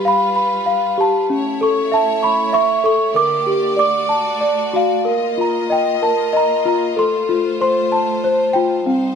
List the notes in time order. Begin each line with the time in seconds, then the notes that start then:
Already playing: G3 F4 G4 B4
0.05 F5 B5
0.36 B5
0.66 F5
0.98 G4 A5
1.30 A3 C#4 E4 C#5
1.61 A4 C#6
1.92 E5 A5
2.23 B5 C#6
2.53 E5 C#6
2.84 A4 C#6
3.13 D3 A#3 G4 A#4 D5 D6
3.47 G4
3.76 A3 F#4 D5 D6
4.09 A5
4.41 D5
4.73 F#4 F5
5.04 A#3 F4 A#4 D#5
5.38 F4 A#5
5.70 D#5 G5
6.02 A#4 A5
6.33 D#5 A#5
6.65 F4 A#5
6.96 A3 A4 C5 C6
7.29 F4
7.61 C5 C6
7.92 A5
8.24 C5
8.53 F4 G5
8.86 G3 C4 D#4 C5